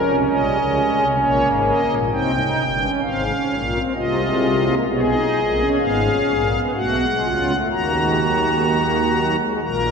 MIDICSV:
0, 0, Header, 1, 2, 480
1, 0, Start_track
1, 0, Tempo, 921659
1, 1110, Time_signature, 3, 2, 24, 8
1, 3025, Tempo, 955414
1, 5086, End_track
2, 0, Start_track
2, 0, Title_t, "Pipe organ"
2, 0, Program_c, 0, 19
2, 0, Note_on_c, 0, 53, 53
2, 0, Note_on_c, 0, 61, 49
2, 0, Note_on_c, 0, 70, 58
2, 26, Note_on_c, 0, 48, 65
2, 30, Note_on_c, 0, 36, 65
2, 55, Note_off_c, 0, 53, 0
2, 82, Note_off_c, 0, 70, 0
2, 130, Note_off_c, 0, 48, 0
2, 133, Note_off_c, 0, 36, 0
2, 147, Note_on_c, 0, 34, 62
2, 148, Note_on_c, 0, 55, 56
2, 148, Note_on_c, 0, 75, 57
2, 150, Note_on_c, 0, 46, 58
2, 251, Note_off_c, 0, 34, 0
2, 254, Note_off_c, 0, 46, 0
2, 261, Note_on_c, 0, 49, 66
2, 263, Note_on_c, 0, 37, 64
2, 298, Note_off_c, 0, 55, 0
2, 384, Note_on_c, 0, 56, 58
2, 413, Note_off_c, 0, 49, 0
2, 414, Note_off_c, 0, 37, 0
2, 511, Note_on_c, 0, 36, 63
2, 511, Note_on_c, 0, 48, 62
2, 535, Note_off_c, 0, 56, 0
2, 563, Note_off_c, 0, 75, 0
2, 614, Note_off_c, 0, 36, 0
2, 614, Note_off_c, 0, 48, 0
2, 621, Note_on_c, 0, 73, 57
2, 622, Note_on_c, 0, 34, 68
2, 623, Note_on_c, 0, 46, 68
2, 623, Note_on_c, 0, 58, 60
2, 728, Note_off_c, 0, 34, 0
2, 729, Note_off_c, 0, 46, 0
2, 742, Note_on_c, 0, 32, 66
2, 742, Note_on_c, 0, 44, 64
2, 772, Note_off_c, 0, 73, 0
2, 862, Note_on_c, 0, 75, 53
2, 893, Note_off_c, 0, 32, 0
2, 893, Note_off_c, 0, 44, 0
2, 943, Note_off_c, 0, 61, 0
2, 979, Note_on_c, 0, 34, 66
2, 981, Note_on_c, 0, 46, 63
2, 1014, Note_off_c, 0, 75, 0
2, 1039, Note_off_c, 0, 58, 0
2, 1087, Note_off_c, 0, 34, 0
2, 1088, Note_off_c, 0, 46, 0
2, 1098, Note_on_c, 0, 60, 71
2, 1098, Note_on_c, 0, 63, 64
2, 1099, Note_on_c, 0, 79, 66
2, 1100, Note_on_c, 0, 48, 66
2, 1101, Note_on_c, 0, 36, 66
2, 1206, Note_off_c, 0, 63, 0
2, 1207, Note_off_c, 0, 60, 0
2, 1217, Note_on_c, 0, 63, 67
2, 1252, Note_off_c, 0, 48, 0
2, 1253, Note_off_c, 0, 36, 0
2, 1338, Note_on_c, 0, 31, 61
2, 1340, Note_on_c, 0, 43, 59
2, 1370, Note_off_c, 0, 63, 0
2, 1457, Note_on_c, 0, 61, 73
2, 1491, Note_off_c, 0, 31, 0
2, 1492, Note_off_c, 0, 43, 0
2, 1516, Note_off_c, 0, 79, 0
2, 1566, Note_off_c, 0, 61, 0
2, 1571, Note_on_c, 0, 32, 63
2, 1571, Note_on_c, 0, 44, 64
2, 1571, Note_on_c, 0, 60, 68
2, 1571, Note_on_c, 0, 77, 63
2, 1682, Note_off_c, 0, 60, 0
2, 1698, Note_on_c, 0, 61, 75
2, 1725, Note_off_c, 0, 32, 0
2, 1725, Note_off_c, 0, 44, 0
2, 1817, Note_on_c, 0, 34, 63
2, 1818, Note_on_c, 0, 46, 65
2, 1850, Note_off_c, 0, 61, 0
2, 1936, Note_on_c, 0, 60, 67
2, 1968, Note_off_c, 0, 34, 0
2, 1969, Note_off_c, 0, 46, 0
2, 1990, Note_off_c, 0, 77, 0
2, 2044, Note_off_c, 0, 60, 0
2, 2057, Note_on_c, 0, 36, 67
2, 2057, Note_on_c, 0, 58, 75
2, 2058, Note_on_c, 0, 48, 67
2, 2059, Note_on_c, 0, 65, 67
2, 2059, Note_on_c, 0, 75, 69
2, 2164, Note_off_c, 0, 58, 0
2, 2172, Note_on_c, 0, 56, 70
2, 2324, Note_off_c, 0, 56, 0
2, 2412, Note_on_c, 0, 58, 66
2, 2472, Note_off_c, 0, 36, 0
2, 2473, Note_off_c, 0, 48, 0
2, 2473, Note_off_c, 0, 65, 0
2, 2473, Note_off_c, 0, 75, 0
2, 2521, Note_off_c, 0, 58, 0
2, 2532, Note_on_c, 0, 47, 69
2, 2533, Note_on_c, 0, 68, 67
2, 2534, Note_on_c, 0, 35, 70
2, 2534, Note_on_c, 0, 59, 78
2, 2534, Note_on_c, 0, 75, 69
2, 2564, Note_on_c, 0, 73, 58
2, 2570, Note_off_c, 0, 75, 0
2, 2608, Note_off_c, 0, 73, 0
2, 2609, Note_on_c, 0, 75, 66
2, 2642, Note_off_c, 0, 59, 0
2, 2659, Note_on_c, 0, 63, 68
2, 2685, Note_off_c, 0, 47, 0
2, 2686, Note_off_c, 0, 35, 0
2, 2780, Note_on_c, 0, 34, 61
2, 2780, Note_on_c, 0, 46, 57
2, 2810, Note_off_c, 0, 63, 0
2, 2897, Note_on_c, 0, 61, 69
2, 2931, Note_off_c, 0, 34, 0
2, 2931, Note_off_c, 0, 46, 0
2, 2964, Note_off_c, 0, 75, 0
2, 3005, Note_off_c, 0, 61, 0
2, 3015, Note_on_c, 0, 77, 63
2, 3017, Note_on_c, 0, 32, 60
2, 3018, Note_on_c, 0, 44, 59
2, 3018, Note_on_c, 0, 59, 71
2, 3122, Note_off_c, 0, 59, 0
2, 3134, Note_on_c, 0, 61, 73
2, 3166, Note_off_c, 0, 32, 0
2, 3166, Note_off_c, 0, 44, 0
2, 3251, Note_on_c, 0, 46, 58
2, 3252, Note_on_c, 0, 34, 59
2, 3284, Note_off_c, 0, 61, 0
2, 3361, Note_off_c, 0, 68, 0
2, 3376, Note_on_c, 0, 59, 64
2, 3401, Note_off_c, 0, 46, 0
2, 3402, Note_off_c, 0, 34, 0
2, 3427, Note_off_c, 0, 77, 0
2, 3480, Note_off_c, 0, 59, 0
2, 3493, Note_on_c, 0, 35, 65
2, 3494, Note_on_c, 0, 47, 61
2, 3494, Note_on_c, 0, 66, 61
2, 3494, Note_on_c, 0, 78, 64
2, 3497, Note_on_c, 0, 57, 68
2, 3601, Note_off_c, 0, 57, 0
2, 3612, Note_on_c, 0, 56, 69
2, 3643, Note_off_c, 0, 35, 0
2, 3644, Note_off_c, 0, 47, 0
2, 3644, Note_off_c, 0, 66, 0
2, 3735, Note_on_c, 0, 37, 59
2, 3737, Note_on_c, 0, 49, 53
2, 3737, Note_on_c, 0, 65, 57
2, 3763, Note_off_c, 0, 56, 0
2, 3863, Note_on_c, 0, 57, 61
2, 3886, Note_off_c, 0, 37, 0
2, 3887, Note_off_c, 0, 49, 0
2, 3887, Note_off_c, 0, 65, 0
2, 3909, Note_off_c, 0, 78, 0
2, 3965, Note_off_c, 0, 57, 0
2, 3979, Note_on_c, 0, 39, 63
2, 3979, Note_on_c, 0, 58, 60
2, 3979, Note_on_c, 0, 66, 61
2, 3980, Note_on_c, 0, 51, 65
2, 3981, Note_on_c, 0, 82, 65
2, 4083, Note_off_c, 0, 58, 0
2, 4102, Note_on_c, 0, 56, 53
2, 4205, Note_off_c, 0, 56, 0
2, 4224, Note_on_c, 0, 54, 52
2, 4326, Note_off_c, 0, 54, 0
2, 4344, Note_on_c, 0, 56, 58
2, 4447, Note_off_c, 0, 56, 0
2, 4462, Note_on_c, 0, 58, 55
2, 4612, Note_off_c, 0, 58, 0
2, 4706, Note_on_c, 0, 54, 54
2, 4809, Note_off_c, 0, 54, 0
2, 4810, Note_off_c, 0, 39, 0
2, 4810, Note_off_c, 0, 51, 0
2, 4810, Note_off_c, 0, 66, 0
2, 4811, Note_off_c, 0, 82, 0
2, 4823, Note_on_c, 0, 56, 50
2, 4928, Note_off_c, 0, 56, 0
2, 4941, Note_on_c, 0, 82, 59
2, 4942, Note_on_c, 0, 58, 59
2, 4942, Note_on_c, 0, 70, 59
2, 4944, Note_on_c, 0, 46, 60
2, 4945, Note_on_c, 0, 34, 57
2, 5048, Note_off_c, 0, 58, 0
2, 5063, Note_on_c, 0, 54, 56
2, 5086, Note_off_c, 0, 34, 0
2, 5086, Note_off_c, 0, 46, 0
2, 5086, Note_off_c, 0, 54, 0
2, 5086, Note_off_c, 0, 70, 0
2, 5086, Note_off_c, 0, 82, 0
2, 5086, End_track
0, 0, End_of_file